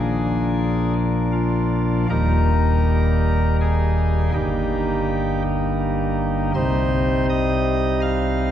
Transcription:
Already playing: A#1 A#2 F3 A#3 D4 G#4
1.32 F4
2.09 D#1 D#2 G3 A#3 D#4 A#4
3.61 G#4
4.33 G1 G2 G3 A#3 D#4 G4
6.54 C2 C3 G3 D#4 C5
7.30 D#5
8.01 F5

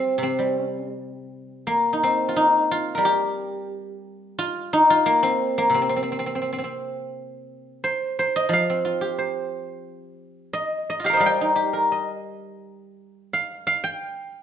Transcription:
Already playing: G3 C4 F4 G4
0.18 C3
0.23 C4
0.39 G3
1.67 A#3
1.93 D#4
2.03 C4
2.29 F4
2.36 D#4
2.71 F4
2.95 G3 A#4
3.05 G4
4.39 F4
4.73 D#4
4.90 F4
5.06 A#3
5.23 C4
5.58 A#3
5.70 C3
5.74 C4
5.82 C4
5.89 C4
5.96 C4
6.03 C4
6.12 C4
6.19 C4
6.26 C4
6.35 C4
6.42 C4
6.53 C4
6.58 C4
6.64 C4
7.84 C5
8.19 C5
8.36 D#5
8.49 F3
8.53 F5
8.70 C4
8.85 F4
9.01 G4
9.18 C5
10.53 D#5
10.90 D#5
11.00 F4
11.04 G4 F5
11.09 A#4
11.13 C5 D#5
11.20 G3 F5
11.26 G5
11.41 D#4
11.56 G4
11.73 A#4
11.92 D#5
13.33 F5
13.67 F5
13.84 G5

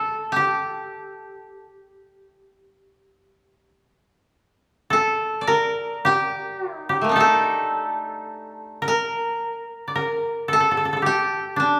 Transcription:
Already playing: A4
0.32 G4
0.36 G4
1.54 G#4
1.86 G4
2.20 G#4
2.52 G4
4.90 A4
5.41 D5
5.47 A#4
6.05 G4
6.78 D#4
6.89 G4
7.01 A3 A#3
7.09 D4 D#4
7.16 G4 A4
7.20 A4
8.82 A#4
8.88 A#4
9.88 D5
9.95 A#4
10.48 A4
10.53 A4
10.60 A4
10.71 A4
10.77 A4
10.85 A4
10.93 A4
11.02 G4
11.06 G4
11.56 D4

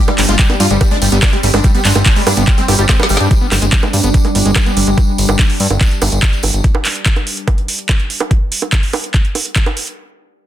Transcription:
Already playing: G3 C4
0.08 G3 G#3, closed hi-hat, high bongo
0.18 G1 G3, clap, open hi-hat, tambourine
0.28 G1 G#3 F4, closed hi-hat, tambourine
0.39 G3, kick, clap, closed hi-hat, tambourine
0.50 G3 B3, closed hi-hat, high bongo
0.60 G2 G3 F4, open hi-hat, tambourine
0.70 G1 G3 G#3, closed hi-hat, tambourine
0.81 G3, kick, closed hi-hat, tambourine, high bongo
0.91 G#3 D4
1.02 G1 G3, open hi-hat, tambourine
1.12 G1 G3 B3, closed hi-hat, tambourine
1.22 G3 D4, kick, clap, closed hi-hat, tambourine, high bongo
1.33 G3 G#3, closed hi-hat
1.43 G1 G3, open hi-hat, tambourine
1.53 G1 G#3 D4, closed hi-hat, tambourine, high bongo
1.64 G3, kick, closed hi-hat, tambourine
1.75 G3 B3, closed hi-hat, tambourine
1.85 G1 G3 D4, clap, open hi-hat, tambourine
1.95 G1 G3 G#3, closed hi-hat, tambourine, high bongo
2.06 G3 D4, kick, clap, closed hi-hat, tambourine
2.16 G3 G#3, open hi-hat, tambourine
2.26 G2 G3 D4, open hi-hat, tambourine, high bongo
2.37 G1 G3 B3, closed hi-hat, tambourine
2.47 G3, kick, clap, closed hi-hat, tambourine
2.57 G#3 C4, closed hi-hat, tambourine
2.68 G1 G3 G4, open hi-hat, tambourine, high bongo
2.79 G1 G3 G4, closed hi-hat, tambourine
2.89 G#3 C4, kick, snare, clap, closed hi-hat, tambourine
2.99 G3, snare, closed hi-hat, tambourine, high bongo
3.09 G1 G3 G4, open hi-hat, tambourine
3.17 G2 G3 D4, snare, closed hi-hat, tambourine
3.31 G3 D4, kick, closed hi-hat, tambourine
3.41 B3
3.52 G1 G3, clap, open hi-hat, tambourine, high bongo
3.62 G1 G#3, closed hi-hat, tambourine
3.71 G3 G4, kick, clap, closed hi-hat, tambourine
3.83 G#3, closed hi-hat, high bongo
3.93 G2 G3, open hi-hat, tambourine
4.04 G1 B3 G5, closed hi-hat, tambourine
4.14 G3, kick, closed hi-hat, tambourine
4.25 G#3, closed hi-hat, high bongo
4.35 G1 G3, open hi-hat, tambourine
4.45 G1 G#3, closed hi-hat, tambourine
4.56 G3, kick, clap, closed hi-hat, high bongo
4.66 B3, closed hi-hat, tambourine
4.77 G1 G3, open hi-hat, tambourine
4.87 G1 G#3, closed hi-hat, tambourine
4.98 kick, closed hi-hat, tambourine, high bongo
5.18 G1, open hi-hat, tambourine
5.29 G1, closed hi-hat, tambourine, high bongo
5.39 kick, clap, closed hi-hat, tambourine
5.50 open hi-hat
5.60 G2, open hi-hat, tambourine
5.70 G1, closed hi-hat, tambourine, high bongo
5.81 kick, clap, closed hi-hat, tambourine
5.91 closed hi-hat
6.01 G1, open hi-hat, tambourine, high bongo
6.11 G1, closed hi-hat, tambourine
6.22 kick, clap, closed hi-hat, tambourine
6.33 closed hi-hat, tambourine
6.43 G1, open hi-hat, tambourine, high bongo
6.54 G1, closed hi-hat, tambourine
6.64 kick, closed hi-hat
6.75 high bongo
6.85 clap, open hi-hat
6.95 closed hi-hat
7.06 kick, clap, closed hi-hat
7.16 closed hi-hat, high bongo
7.27 open hi-hat
7.37 closed hi-hat
7.48 kick, closed hi-hat, high bongo
7.58 closed hi-hat
7.68 open hi-hat
7.79 closed hi-hat
7.89 kick, clap, closed hi-hat, high bongo
8.00 closed hi-hat
8.10 open hi-hat
8.20 closed hi-hat, high bongo
8.31 kick, closed hi-hat
8.52 open hi-hat
8.62 high bongo
8.73 kick, clap, closed hi-hat
8.83 open hi-hat
8.93 open hi-hat, high bongo
9.04 closed hi-hat
9.14 kick, clap, closed hi-hat
9.25 closed hi-hat
9.35 open hi-hat, high bongo
9.46 closed hi-hat
9.56 kick, clap, closed hi-hat
9.66 closed hi-hat, high bongo
9.77 open hi-hat
9.87 closed hi-hat

